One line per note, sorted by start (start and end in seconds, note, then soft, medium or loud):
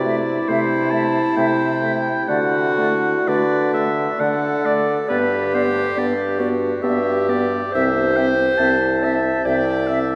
0.00 0.39 C3 medium
0.00 2.24 E4 loud
0.00 0.50 D5 medium
0.05 0.21 A3 medium
0.05 0.15 E5 medium
0.48 1.27 C3 medium
0.48 0.64 A3 medium
0.48 0.92 C5 medium
0.48 0.59 E5 medium
0.91 1.08 A3 medium
0.91 1.03 E5 medium
0.91 1.36 A5 medium
1.36 2.18 C3 medium
1.36 1.52 A3 medium
1.36 1.46 E5 medium
1.36 2.30 G5 medium
1.82 1.98 A3 medium
1.82 1.92 E5 medium
2.28 3.16 D3 medium
2.28 2.44 A3 medium
2.28 3.30 F#4 loud
2.28 2.39 D5 medium
2.28 3.29 F#5 medium
2.77 2.93 A3 medium
2.77 2.88 D5 medium
3.27 4.09 D3 medium
3.27 3.43 A3 medium
3.27 3.91 B4 medium
3.27 3.37 D5 medium
3.27 3.73 D5 medium
3.73 3.90 A3 medium
3.73 3.84 D5 medium
3.73 4.21 E5 medium
4.18 5.00 D3 medium
4.18 4.35 A3 medium
4.18 5.11 A4 medium
4.18 4.28 D5 medium
4.18 4.67 F#5 medium
4.63 4.81 A3 medium
4.63 4.73 D5 medium
4.63 4.96 D5 medium
5.07 5.87 G2 medium
5.07 5.26 B3 medium
5.07 6.40 G4 loud
5.07 5.56 B4 medium
5.07 5.17 D5 medium
5.52 5.70 B3 medium
5.52 6.00 C5 medium
5.52 5.62 D5 medium
5.95 6.73 G2 medium
5.95 6.13 B3 medium
5.95 6.05 D5 medium
5.95 6.56 D5 medium
6.38 6.56 B3 medium
6.38 6.84 F#4 medium
6.38 6.48 D5 medium
6.81 7.64 G2 medium
6.81 6.99 B3 medium
6.81 7.73 G4 loud
6.81 6.92 D5 medium
6.81 7.31 E5 medium
7.29 7.45 B3 medium
7.29 7.39 D5 medium
7.29 7.74 D5 medium
7.72 8.50 C2 medium
7.72 7.91 C4 medium
7.72 9.05 C5 loud
7.72 7.84 E5 medium
7.72 8.18 E5 medium
8.17 8.33 C4 medium
8.17 8.27 E5 medium
8.17 8.59 G5 medium
8.58 9.36 C2 medium
8.58 8.76 C4 medium
8.58 8.68 E5 medium
8.58 9.48 A5 medium
9.03 9.19 C4 medium
9.03 9.44 E5 medium
9.03 9.13 E5 medium
9.45 10.15 C2 medium
9.45 9.61 C4 medium
9.45 10.15 D5 loud
9.45 9.56 E5 medium
9.45 9.89 G5 medium
9.87 10.04 C4 medium
9.87 10.15 E5 medium
9.87 9.99 E5 medium